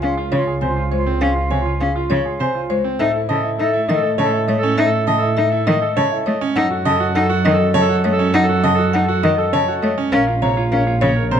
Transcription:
Already playing: C#2
0.02 C#4 F4 G#4 F5
0.17 F4
0.32 C#3 F4 C#5
0.47 G#4
0.61 C3 C5 G#5
0.67 F4
0.76 F4
0.91 G#3 C5 C#5
0.98 F4
1.06 C4
1.21 C#4 G#4 F5
1.29 F4
1.36 F4
1.51 C3 C#5 G#5
1.60 F4
1.66 F4
1.80 C#4 G#4 F5
1.91 F4
1.96 F4
2.10 C#3 C#5
2.22 F4 G#4
2.40 C3 C5 G#5
2.53 F4
2.70 G#3 C5 C#5
2.84 C4
2.99 A2 D#4 A4 E5
3.14 E4
3.29 C#3 A4 D#5 A5
3.44 E4
3.59 D#4 A4 E5
3.73 E4
3.88 D#3 D#5
3.93 A4
4.03 A4
4.18 C#3 C#5 A5
4.24 A4
4.33 E4
4.48 A3 C#5 D#5
4.54 A4
4.63 C#4
4.78 D#4 A4 E5
4.85 A4
4.93 E4
5.07 C#3 D#5 A5
5.17 A4
5.22 E4
5.37 D#4 A4 E5
5.49 E4 A4
5.67 D#3 D#5
5.79 A4
5.97 C#3 C#5 A5
6.10 E4 A4
6.26 A3 C#5 D#5
6.41 C#4
6.56 F#2 D#4 A4 F#5
6.71 F#4
6.85 C#3 A4 D#5 A5
7.00 F#4
7.15 D#4 A4 F#5
7.19 A4
7.30 F#4
7.44 D#3 D#5
7.49 A4
7.59 A4
7.74 C#3 C#5 A5
7.81 A4
7.89 F#4
8.04 A3 C#5 D#5
8.12 A4
8.19 C#4
8.34 D#4 A4 F#5
8.43 A4
8.49 F#4
8.64 C#3 D#5 A5
8.74 A4
8.79 F#4
8.93 D#4 A4 F#5
9.04 A4
9.09 F#4
9.23 D#3 D#5
9.36 A4
9.53 C#3 C#5 A5
9.67 F#4 A4
9.82 A3 C#5 D#5
9.98 C#4
10.12 A#1 C#4 A#4 C#5 F5
10.27 F4
10.42 C3 C#5 A#5
10.57 F4
10.72 C#4 A#4 C#5 F5
10.87 F4
11.01 C#3 C#5
11.05 C#5
11.16 A#4
11.31 C3 C5 A#5
11.36 C#5

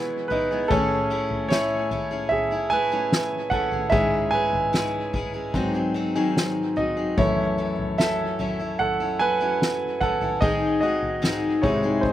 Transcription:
Already playing: B2 E3 G#3 B3 E4 G#4 B4 C#5
0.28 G#3 B3 D#4 E4 B4, floor tom
0.32 G#4
0.51 G#3 B3 E4 G#4
0.68 A2 A3 C#4 E4 G#4 A4, kick, floor tom
1.10 A3 C#4 E4 G#4
1.31 floor tom
1.49 A3 C#4 E4 G#4 C#5, snare
1.91 A3 C#4 E4 G#4, floor tom
2.11 C#4 E4 G#4
2.29 G#4 E5, floor tom
2.51 C#4 E4 G#4
2.70 A3 C#4 E4 G#4 B4 G#5
2.92 A3 C#4 E4 G#4
3.12 snare
3.50 A3 C#4 E4 G#4 A4 F#5, kick, floor tom
3.71 C#4 E4 G#4, floor tom
3.90 G#2 C#3 G#3 C#4 E4 G#4 E5, kick, floor tom
4.31 G#3 C#4 E4 G#4 B4 G#5
4.53 floor tom
4.73 G#2 C#3 G#3 C#4 E4 G#4, snare
5.13 G#3 C#4 E4 G#4, kick, floor tom
5.34 G#3 C#4 E4 G#4
5.54 G#2 D#3 F#3 C4 D#4 G#4, kick, floor tom
5.74 F#3 C4 D#4 G#4
5.94 F#3 C4 D#4 G#4
6.15 G#2 D#3 F#3 C4 D#4 G#4
6.37 snare
6.76 F#3 C4 D#4 F#4 G#4 D#5, floor tom
6.97 F#3 C4 D#4 G#4
7.17 F#2 E3 F#3 A3 C#4 E4 A4 C#5, kick, floor tom
7.58 F#3 C#4 E4 A4
7.79 floor tom
7.98 F#3 C#4 E4 A4 E5, snare
8.39 F#3 C#4 E4 A4, floor tom
8.59 C#4 E4 A4
8.79 A4 F#5, floor tom
9.00 C#4 E4 A4
9.19 F#3 C#4 E4 A4 B4 G#5
9.41 F#3 C#4 E4 A4
9.62 snare
10.01 F#3 C#4 E4 A4 F#5, kick, floor tom
10.21 C#4 E4 A4, floor tom
10.41 G#2 D#3 G#3 C4 D#4 G#4 D#5, kick, floor tom
10.81 G#3 C4 D#4 F#4 G#4 D#5
11.02 floor tom
11.22 G#2 D#3 G#3 C4 D#4 G#4, snare
11.62 G#2 C3 G#3 C4 D#4 E4 G#4 C#5, kick, floor tom
11.83 G#3 C4 D#4 G#4
12.01 D#4 C5, kick, floor tom

